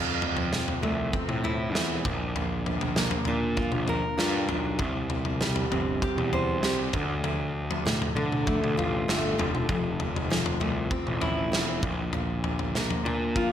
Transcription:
Already playing: picked electric bass F2, steel-string acoustic guitar F2
0.22 floor tom
0.37 floor tom
0.53 steel-string acoustic guitar F3, snare, mid tom
0.68 floor tom
0.82 picked electric bass C2, steel-string acoustic guitar A3, floor tom
1.13 steel-string acoustic guitar C4, kick, floor tom
1.28 picked electric bass A2, mid tom
1.44 steel-string acoustic guitar E4, floor tom
1.75 picked electric bass E2, steel-string acoustic guitar C4, snare
2.05 picked electric bass A#1, steel-string acoustic guitar A#2, kick, floor tom
2.36 steel-string acoustic guitar A#2, floor tom
2.66 floor tom
2.81 floor tom
2.96 steel-string acoustic guitar A#3, snare, mid tom
3.11 floor tom
3.25 picked electric bass A#2, steel-string acoustic guitar D4, floor tom
3.57 steel-string acoustic guitar F4, kick, floor tom
3.72 picked electric bass A#1, mid tom
3.88 steel-string acoustic guitar A#4, floor tom
4.18 picked electric bass G2, steel-string acoustic guitar F4, snare
4.49 picked electric bass B1, steel-string acoustic guitar D4, floor tom
4.79 picked electric bass C2, steel-string acoustic guitar C3, kick, floor tom
5.10 floor tom
5.25 floor tom
5.41 steel-string acoustic guitar G3, snare, mid tom
5.56 floor tom
5.71 picked electric bass G1, steel-string acoustic guitar C4, floor tom
6.02 steel-string acoustic guitar G4, kick, floor tom
6.16 picked electric bass E2, mid tom
6.33 steel-string acoustic guitar C5, floor tom
6.63 picked electric bass C2, steel-string acoustic guitar G4, snare
6.93 picked electric bass D2, steel-string acoustic guitar D2, kick, floor tom
7.24 steel-string acoustic guitar D2, floor tom
7.71 floor tom
7.85 steel-string acoustic guitar A2, snare, mid tom
8.02 floor tom
8.15 picked electric bass D3, steel-string acoustic guitar D3, floor tom
8.32 mid tom
8.47 steel-string acoustic guitar A3, kick, floor tom
8.62 picked electric bass D2, mid tom
8.77 picked electric bass A1, steel-string acoustic guitar F4, floor tom
9.08 picked electric bass G1, steel-string acoustic guitar A3, snare
9.38 picked electric bass F1, steel-string acoustic guitar D3, floor tom
9.55 mid tom
9.69 picked electric bass F1, steel-string acoustic guitar F2, kick, floor tom
10.00 floor tom
10.16 floor tom
10.30 steel-string acoustic guitar F3, snare, mid tom
10.46 floor tom
10.60 picked electric bass C2, steel-string acoustic guitar A3, floor tom
10.91 steel-string acoustic guitar C4, kick, floor tom
11.07 picked electric bass A1, mid tom
11.21 steel-string acoustic guitar E4, floor tom
11.52 picked electric bass E1, steel-string acoustic guitar C4, snare
11.82 picked electric bass A#1, steel-string acoustic guitar A#2, kick, floor tom
12.13 steel-string acoustic guitar A#2, floor tom
12.44 floor tom
12.59 floor tom
12.75 steel-string acoustic guitar A#3, snare, mid tom
12.90 floor tom
13.04 picked electric bass A#2, steel-string acoustic guitar D4, floor tom
13.36 steel-string acoustic guitar F4, kick, floor tom

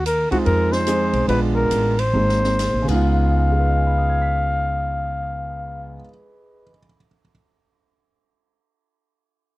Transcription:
Already playing: upright bass D#2
0.06 trumpet A#4, hi-hat pedal, ride
0.31 grand piano G#3 C4 D#4 F4, trumpet F#4, muted upright bass stroke, kick, ride
0.46 upright bass F2, trumpet A#4, ride
0.72 trumpet C5, snare
0.87 grand piano G#3 C4 D#4 G#4, cross-stick, hi-hat pedal, ride
1.13 upright bass B1, ride
1.28 upright bass A#1, grand piano G#3 B3 D4 F4, trumpet B4, ride
1.56 trumpet A#4
1.70 upright bass A1, hi-hat pedal, ride
1.99 trumpet C5, ride
2.13 upright bass G#1, grand piano A#3 C4 D#4 G#4
2.29 snare
2.44 snare
2.59 cross-stick, snare, hi-hat pedal, ride
2.74 upright bass A#1
2.82 grand piano C#3 G#3
2.88 upright bass C#2, grand piano B3 D#4, trumpet F5, kick, crash
2.94 grand piano F4
3.52 grand piano G#4
3.60 grand piano B4
3.68 grand piano D#5
3.77 grand piano G#5
3.87 grand piano B5
3.98 grand piano D#6
4.09 grand piano G#6
4.22 grand piano B6

